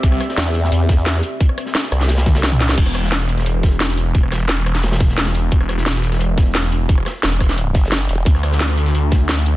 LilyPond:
<<
  \new Staff \with { instrumentName = "Analog synth pad" } { \time 4/4 \key c \lydian \tempo 4 = 175 <c' g' d'' e''>1~ | <c' g' d'' e''>1 | r1 | r1 |
r1 | r1 | r1 | }
  \new Staff \with { instrumentName = "Wobble bass" } { \clef bass \time 4/4 \key c \lydian r4 e,4 e,4. r8 | r4. c,2~ c,8 | r1 | r1 |
r1 | r2 r8 fis,,4 e,,8 | r1 | }
  \new Staff \with { instrumentName = "Detuned saw bass" } { \clef bass \time 4/4 \key c \lydian c,8 r2. r8 | r1 | e,,1 | e,,8 e,,2.~ e,,8 |
e,,1 | e,,8 r8 e,,4. r4. | d,1 | }
  \new DrumStaff \with { instrumentName = "Drums" } \drummode { \time 4/4 <hh bd>16 <hh ss>16 <hh ss>16 sn16 <hh sn>16 sn16 hh16 sn16 hh8 <hh bd sn>8 <hh sn>16 sn16 hh8 | <hh bd>16 ss16 <hh ss>16 sn16 <hh sn>16 sn16 <hh ss>16 sn16 <hh sn>16 <hh sn>16 <hh bd sn tommh>16 <hh sn>16 <hh sn>16 toml16 <hh sn>16 sn16 | <cymc hh bd>16 <hh ss>16 <hh ss>16 sn16 <hh sn>16 sn16 hh16 <hh sn>16 hh8 <hh bd sn>8 <hh sn>16 sn16 hh8 | <hh bd>16 ss16 <hh ss sn>8 <hh sn>8 <hh ss>16 <hh sn>16 <hh sn>16 <hh sn>16 <hh bd sn>16 sn16 <hh sn>32 <hh sn>32 <hh sn>16 hh8 |
<hh bd>16 <hh ss>16 <hh ss>16 sn16 <hh sn>16 sn16 hh16 <hh sn>16 hh8 <hh bd sn>8 <hh sn>16 sn16 hh8 | <hh bd>16 ss16 <hh ss sn>8 <hh sn>16 hh16 <hh bd ss>16 <hh sn>16 hh8 <hh bd sn>16 sn16 <hh sn>8 hh8 | <hh bd>16 <hh ss>16 <hh ss>16 sn16 <hh sn>16 sn16 hh16 <hh sn>16 hh8 <hh bd sn>8 <hh sn>16 sn16 hh8 | }
>>